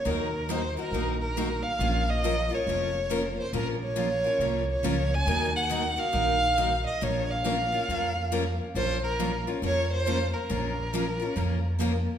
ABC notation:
X:1
M:4/4
L:1/8
Q:"Swing" 1/4=138
K:Bbm
V:1 name="Violin"
B2 c B2 B2 f- | f e2 d4 c | B d4 d2 a- | a g2 f4 e |
d f6 z | c B2 z d c2 B- | B6- B z |]
V:2 name="Steel-string acoustic guitar"
[E,B,EGB] z [E,B,EGB] [EGB] [E,B,EGB] z [E,B,EGB] z | [F,B,DFB] z [F,B,DFB] [DFB] [F,B,DFB] z [F,B,DFB] z | [F,B,DFB] z [F,B,DFB] [DFB] [F,B,DFB] z [F,B,DFB] z | [E,B,EGB] z [E,B,EGB] [EGB] [E,B,EGB] z [E,B,EGB] z |
[F,B,DFB] z [F,B,DFB] [DFB] [F,B,DFB] z [F,B,DFB] z | [F,B,DFB] z [F,B,DFB] [DFB] [F,B,DFB] z [F,B,DFB] z | [F,B,DFB] z [F,B,DFB] [DFB] [F,B,DFB] z [F,B,DFB] z |]
V:3 name="Steel-string acoustic guitar"
[E,B,EGB] z [E,B,EGB] z [E,B,EGB] z [E,B,EGB] z | [F,B,DFB] z [F,B,DFB] z [F,B,DFB] z [F,B,DFB] z | [F,B,DFB] z [F,B,DFB] z [F,B,DFB] z [F,B,DFB] z | [E,B,EGB] z [E,B,EGB] z [E,B,EGB] z [E,B,EGB] z |
[F,B,DFB] z [F,B,DFB] z [F,B,DFB] z [F,B,DFB] z | [F,B,DFB] z [F,B,DFB] z [F,B,DFB] z [F,B,DFB] z | [F,B,DFB] z [F,B,DFB] z [F,B,DFB] z [F,B,DFB] z |]
V:4 name="Upright bass" clef=bass
E,,4 B,,,4 | B,,,4 F,,,4 | B,,,4 C,,2 D,,2 | E,,4 B,,,4 |
B,,,4 F,,4 | B,,,4 F,,4 | B,,,4 F,,4 |]